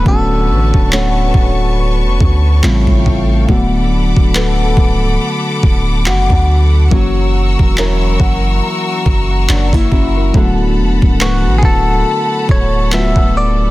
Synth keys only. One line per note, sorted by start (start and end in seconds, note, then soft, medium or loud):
0.04 2.58 D3 medium
0.04 2.59 A3 medium
0.04 2.59 B3 medium
0.04 2.60 C#4 medium
0.04 2.60 F#4 medium
2.62 3.48 C#3 medium
2.62 3.49 G3 medium
2.62 3.48 A3 medium
2.62 3.49 C4 medium
2.62 3.49 F4 medium
3.47 6.87 D3 medium
3.47 6.87 F#3 medium
3.47 6.88 A3 medium
3.47 6.88 B3 medium
3.47 6.89 F#4 medium
6.90 10.30 E3 medium
6.90 10.30 F#3 medium
6.90 9.02 A#3 medium
6.90 9.02 C#4 medium
6.90 9.03 F#4 medium
8.21 8.60 F#5 medium
8.63 9.03 A#5 medium
9.06 9.29 A#5 medium
9.31 9.48 F#5 medium
9.49 9.72 F#5 medium
9.74 9.91 A#3 medium
9.74 9.91 E4 medium
9.74 9.91 E5 medium
9.92 10.16 C#4 medium
9.92 10.15 F#4 medium
9.92 10.32 E5 medium
10.17 10.58 E4 medium
10.17 10.57 A#4 medium
10.33 12.87 D3 medium
10.33 12.87 F#3 medium
10.33 12.88 A3 medium
10.33 12.88 B3 medium
10.33 12.89 F#4 medium
12.91 13.71 D3 soft
12.91 13.71 F#3 soft
12.91 13.71 A3 soft
12.91 13.71 B3 soft
12.91 13.00 F4 soft
12.99 13.71 F#4 medium